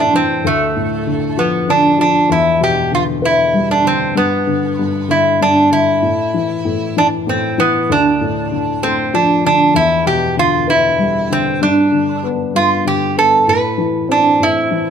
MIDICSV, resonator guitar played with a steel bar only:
0, 0, Header, 1, 2, 480
1, 0, Start_track
1, 0, Key_signature, 0, "minor"
1, 0, Tempo, 620476
1, 342, Time_signature, 6, 3, 24, 8
1, 11527, End_track
2, 0, Start_track
2, 0, Title_t, "Resonator guitar played with a steel bar"
2, 0, Program_c, 0, 25
2, 0, Note_on_c, 0, 62, 60
2, 102, Note_off_c, 0, 62, 0
2, 120, Note_on_c, 0, 60, 68
2, 358, Note_off_c, 0, 60, 0
2, 362, Note_on_c, 0, 57, 66
2, 1073, Note_on_c, 0, 59, 64
2, 1090, Note_off_c, 0, 57, 0
2, 1312, Note_off_c, 0, 59, 0
2, 1316, Note_on_c, 0, 62, 68
2, 1545, Note_off_c, 0, 62, 0
2, 1555, Note_on_c, 0, 62, 69
2, 1790, Note_off_c, 0, 62, 0
2, 1794, Note_on_c, 0, 64, 63
2, 2030, Note_off_c, 0, 64, 0
2, 2038, Note_on_c, 0, 67, 70
2, 2272, Note_off_c, 0, 67, 0
2, 2279, Note_on_c, 0, 65, 67
2, 2341, Note_off_c, 0, 65, 0
2, 2517, Note_on_c, 0, 64, 69
2, 2868, Note_off_c, 0, 64, 0
2, 2871, Note_on_c, 0, 62, 66
2, 2986, Note_off_c, 0, 62, 0
2, 2994, Note_on_c, 0, 60, 72
2, 3225, Note_off_c, 0, 60, 0
2, 3228, Note_on_c, 0, 59, 65
2, 3952, Note_on_c, 0, 64, 65
2, 3968, Note_off_c, 0, 59, 0
2, 4193, Note_off_c, 0, 64, 0
2, 4196, Note_on_c, 0, 62, 67
2, 4415, Note_off_c, 0, 62, 0
2, 4430, Note_on_c, 0, 64, 73
2, 5398, Note_off_c, 0, 64, 0
2, 5401, Note_on_c, 0, 62, 66
2, 5465, Note_off_c, 0, 62, 0
2, 5642, Note_on_c, 0, 60, 64
2, 5877, Note_on_c, 0, 59, 67
2, 5883, Note_off_c, 0, 60, 0
2, 6119, Note_off_c, 0, 59, 0
2, 6127, Note_on_c, 0, 62, 68
2, 6829, Note_off_c, 0, 62, 0
2, 6832, Note_on_c, 0, 60, 71
2, 7073, Note_off_c, 0, 60, 0
2, 7075, Note_on_c, 0, 62, 62
2, 7312, Note_off_c, 0, 62, 0
2, 7322, Note_on_c, 0, 62, 75
2, 7547, Note_off_c, 0, 62, 0
2, 7550, Note_on_c, 0, 64, 85
2, 7788, Note_off_c, 0, 64, 0
2, 7791, Note_on_c, 0, 67, 75
2, 8008, Note_off_c, 0, 67, 0
2, 8040, Note_on_c, 0, 65, 76
2, 8273, Note_off_c, 0, 65, 0
2, 8276, Note_on_c, 0, 64, 71
2, 8760, Note_off_c, 0, 64, 0
2, 8761, Note_on_c, 0, 60, 79
2, 8992, Note_off_c, 0, 60, 0
2, 8995, Note_on_c, 0, 62, 73
2, 9497, Note_off_c, 0, 62, 0
2, 9717, Note_on_c, 0, 65, 72
2, 9933, Note_off_c, 0, 65, 0
2, 9960, Note_on_c, 0, 67, 75
2, 10198, Note_off_c, 0, 67, 0
2, 10201, Note_on_c, 0, 69, 80
2, 10434, Note_off_c, 0, 69, 0
2, 10437, Note_on_c, 0, 71, 78
2, 10882, Note_off_c, 0, 71, 0
2, 10919, Note_on_c, 0, 62, 70
2, 11160, Note_off_c, 0, 62, 0
2, 11164, Note_on_c, 0, 64, 79
2, 11527, Note_off_c, 0, 64, 0
2, 11527, End_track
0, 0, End_of_file